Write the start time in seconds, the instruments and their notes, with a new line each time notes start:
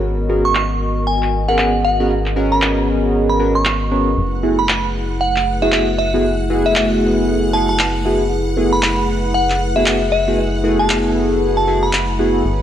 Already playing: analog synth bass G#1, analog synth pad B3 F#4 A#4
0.03 analog synth pad D#5
0.29 analog polysynth B3 C#4 F#4 G#4 A#4
0.45 synth bell C#6
0.55 synth bell C#6, clap
1.07 synth bell G#5
1.22 clap
1.48 analog polysynth B3 C#4 F#4 G#4 A#4, synth bell F#5
1.58 synth bell F#5, clap
1.85 synth bell F#5
2.00 analog polysynth B3 C#4 F#4 G#4 A#4
2.26 clap
2.36 analog polysynth B3 C#4 F#4 G#4 A#4
2.52 synth bell B5
2.62 clap
3.29 synth bell B5
3.39 analog polysynth B3 C#4 F#4 G#4 A#4
3.55 synth bell C#6
3.65 clap
3.91 analog polysynth B3 C#4 F#4 G#4 A#4
4.17 analog synth bass F#1, analog synth pad A3 E4 G#4 B4, string machine F#5 F#6
4.43 analog polysynth A3 B3 E4 F#4 G#4
4.59 synth bell B5
4.69 synth bell B5, clap
5.21 synth bell F#5
5.36 clap
5.62 analog polysynth A3 B3 E4 F#4 G#4, synth bell E5
5.72 synth bell E5, clap
5.98 synth bell E5
6.14 analog polysynth A3 B3 E4 F#4 G#4
6.50 analog polysynth A3 B3 E4 F#4 G#4
6.66 synth bell E5
6.76 synth bell E5, clap
7.53 analog polysynth A3 B3 E4 F#4 G#4, synth bell A5
7.69 synth bell A5
7.79 clap
8.05 analog polysynth A3 B3 E4 F#4 G#4
8.57 analog polysynth A3 B3 E4 F#4 G#4
8.73 synth bell B5
8.83 clap
9.34 synth bell F#5
9.50 clap
9.76 analog polysynth A3 B3 E4 F#4 G#4, synth bell E5
9.86 synth bell E5, clap
10.12 synth bell E5
10.28 analog polysynth A3 B3 E4 F#4 G#4
10.64 analog polysynth A3 B3 E4 F#4 G#4
10.79 synth bell A5
10.90 clap
11.57 synth bell A5
11.67 analog polysynth A3 B3 E4 F#4 G#4
11.83 synth bell B5
11.93 clap
12.19 analog polysynth A3 B3 E4 F#4 G#4
12.45 analog synth bass G#1, string machine B3 B4, analog synth pad B3 F#4 C#5 A#5